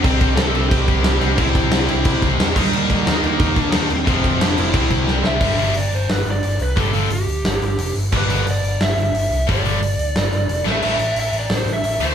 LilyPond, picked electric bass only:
\new Staff \with { instrumentName = "Picked electric bass" } { \clef bass \time 4/4 \key g \mixolydian \tempo 4 = 178 c,8 c,8 c,8 c,8 c,8 c,8 c,8 c,8 | c,8 c,8 c,8 c,8 c,8 c,8 e,8 ees,8 | ees,8 ees,8 ees,8 ees,8 ees,8 ees,8 ees,8 ees,8 | f,,8 f,,8 f,,8 f,,8 c,8 c,8 c,8 c,8 |
g,,8 g,,8 g,,8 g,,8 g,,8 g,,8 g,,8 c,8 | g,,8 g,,8 g,,8 d,8 g,,8 g,,8 f,,8 g,,8 | g,,8 g,,8 g,,8 g,,8 g,,8 g,,8 g,,8 c,8 | g,,8 g,,8 g,,8 d,8 g,,8 g,,8 f,,8 a,,8 |
a,,8 a,,8 a,,8 a,,8 a,,8 a,,8 a,,8 d,8 | }